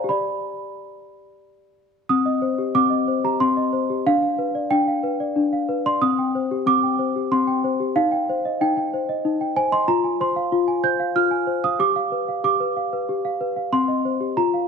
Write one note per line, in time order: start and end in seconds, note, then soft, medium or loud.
0.00 0.10 G#4 medium
0.00 0.11 C5 soft
0.00 0.10 D5 medium
0.00 0.11 F5 soft
0.00 0.11 G#5 medium
0.00 0.10 A#5 medium
0.04 2.03 G4 soft
0.09 1.40 D5 medium
0.09 1.43 B5 medium
2.09 2.74 C4 medium
2.09 2.75 D#6 loud
2.26 2.52 D#5 soft
2.42 2.68 C5 soft
2.58 2.85 G4 soft
2.75 3.39 C4 medium
2.75 3.24 D6 loud
2.90 3.17 D#5 soft
3.08 3.34 C5 soft
3.24 3.50 G4 soft
3.24 3.41 A#5 medium
3.40 4.03 C4 medium
3.40 4.05 C6 loud
3.57 3.83 D#5 soft
3.73 3.99 C5 medium
3.90 4.06 G4 soft
4.06 4.70 D4 medium
4.06 4.21 F5 medium
4.23 4.48 F5 soft
4.38 4.64 B4 soft
4.55 4.81 D5 soft
4.71 5.35 D4 medium
4.71 5.85 G5 loud
4.88 5.13 F5 soft
5.03 5.29 B4 soft
5.20 5.46 D5 soft
5.36 5.99 D4 medium
5.53 5.79 F5 soft
5.69 5.95 B4 medium
5.86 6.02 D5 soft
5.86 6.02 C6 medium
6.02 6.65 C4 medium
6.02 6.67 D#6 loud
6.19 6.44 G5 medium
6.35 6.61 C5 soft
6.51 6.77 G4 soft
6.66 7.31 C4 medium
6.66 7.31 D6 loud
6.83 7.09 G5 soft
6.99 7.24 C5 soft
7.16 7.41 G4 soft
7.32 7.94 C4 medium
7.32 7.96 C6 loud
7.47 7.73 G5 medium
7.64 7.89 C5 soft
7.80 7.96 G4 soft
7.96 8.60 D#4 medium
7.96 8.60 F5 loud
8.12 8.37 G5 medium
8.29 8.54 C5 medium
8.45 8.70 D#5 soft
8.61 9.24 D#4 medium
8.61 8.76 G5 medium
8.77 9.02 G5 medium
8.94 9.18 C5 soft
9.09 9.34 D#5 medium
9.25 9.86 D#4 medium
9.41 9.66 G5 medium
9.56 9.81 C5 medium
9.56 9.72 G#5 loud
9.72 9.88 D#5 soft
9.72 9.88 C6 medium
9.88 10.51 F4 medium
9.88 10.20 A#5 loud
10.04 10.29 G#5 soft
10.21 10.46 C5 soft
10.21 10.85 C6 medium
10.36 10.62 F5 soft
10.52 11.14 F4 medium
10.68 10.94 G#5 medium
10.84 11.09 C5 soft
10.84 11.16 G6 loud
11.00 11.25 F5 soft
11.16 11.78 F4 medium
11.16 11.64 F6 medium
11.31 11.57 G#5 medium
11.47 11.73 C5 soft
11.64 11.80 F5 soft
11.64 11.80 D#6 loud
11.79 12.43 G4 medium
11.79 12.43 D6 loud
11.96 12.22 F5 soft
12.12 12.38 B4 soft
12.28 12.54 F5 soft
12.44 13.08 G4 medium
12.44 13.40 D6 medium
12.60 12.86 B4 soft
12.77 13.02 F5 soft
12.93 13.18 B4 soft
13.09 13.71 G4 medium
13.25 13.50 F5 soft
13.41 13.66 B4 soft
13.56 13.72 F5 soft
13.72 14.35 C4 medium
13.72 14.37 C6 medium
13.88 14.14 D#5 soft
14.05 14.31 C5 soft
14.20 14.37 G4 soft
14.37 14.68 F4 medium
14.37 14.68 A#5 medium
14.54 14.68 F5 soft